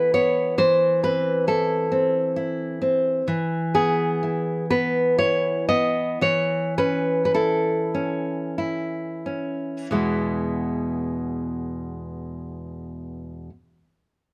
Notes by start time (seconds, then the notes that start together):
Already playing: E3 B3 E4 B4
0.14 B3 C#5
0.58 E3 C5
1.03 C4 B4
1.47 E4 A4
1.92 C4
2.36 E4
2.82 C4
3.28 E3
3.74 B3 G#4
4.23 E4
4.71 B3 B4
5.18 E4 C#5
5.69 B3 D#5
6.21 E3 C#5
6.78 C#4 B4
7.25 B4
7.34 E4 A4
7.94 C#4
8.58 E4
9.26 C#4
9.91 E2 B2 G#3 B3 E4